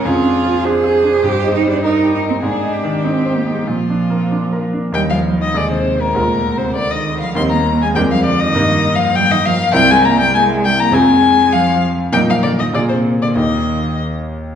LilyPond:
<<
  \new Staff \with { instrumentName = "Violin" } { \time 2/4 \key ees \major \tempo 4 = 100 aes'4 c''4~ | c''4 bes'4 | aes'8 g'4. | f'4. r8 |
g''16 f''8 ees''16 d''16 c''8 bes'16~ | \tuplet 3/2 { bes'4 c''8 } d''16 ees''8 f''16 | c'''16 bes''8 aes''16 g''16 f''16 d''16 ees''16~ | \tuplet 3/2 { ees''4 f''8 } g''16 ees''16 f''8 |
g''16 aes''16 bes''16 g''16 aes''8 g''16 bes''16 | aes''4 f''8 r8 | g''16 f''16 d''16 ees''16 d''16 c''8 d''16 | ees''4 r4 | }
  \new Staff \with { instrumentName = "Grand piano" } { \time 2/4 \key ees \major \tuplet 3/2 { f,8 d'8 f8 d'8 aes'8 d'8 } | \tuplet 3/2 { g,8 ees'8 g8 ees'8 g'8 ees'8 } | \tuplet 3/2 { aes,8 ees'8 ees8 ees'8 c''8 ees'8 } | \tuplet 3/2 { bes,8 d'8 bes8 d'8 bes'8 d'8 } |
<ees, g ees' bes'>4 <ees, aes ees' aes'>4 | <d, aes f' bes'>2 | <ees, g ees' bes'>4 <f, aes d' bes'>4 | <g, bes ees' bes'>2 |
<c, c' e' bes'>2 | <f, c' f' aes'>2 | <bes, bes ees' bes'>4 <bes, bes f' aes'>4 | <ees, bes ees' g'>2 | }
  \new Staff \with { instrumentName = "Cello" } { \clef bass \time 2/4 \key ees \major f'4 aes'4 | g'8 ees'16 d'16 ees'8 ees'16 c'16 | d'4 c'8 bes16 aes16 | f4. r8 |
g16 f8 ees16 d16 c8 bes,16~ | \tuplet 3/2 { bes,4 c8 } d16 ees8 f16 | c'16 bes8 aes16 g16 f16 d16 ees16~ | \tuplet 3/2 { ees4 f8 } g16 ees16 f8 |
g16 aes16 bes16 g16 aes8 g16 bes16 | aes4 f8 r8 | g16 f16 d16 ees16 d16 c8 d16 | ees4 r4 | }
>>